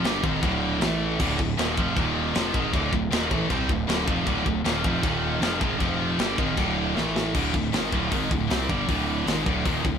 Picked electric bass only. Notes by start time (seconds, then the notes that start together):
0.03 G1
0.23 G#1
0.43 D1
0.80 A1
1.19 D1
1.38 D1
1.57 D#1
1.77 F1
1.96 D#1
2.35 F1
2.54 G#1
2.73 D1
2.92 D1
3.11 D#1
3.30 A1
3.50 C2
3.69 D1
3.87 D1
4.08 F1
4.27 D1
4.46 D1
4.64 D#1
4.84 F1
5.03 D#1
5.41 F1
5.61 G#1
5.80 F1
6.18 G1
6.38 G#1
6.57 D1
6.97 A1
7.34 D1
7.54 D1
7.73 G#1
7.92 D1
8.11 G#1
8.31 D1
8.49 C2
8.69 G1
8.88 D1
9.26 G#1
9.46 D1
9.65 D#1
9.84 D1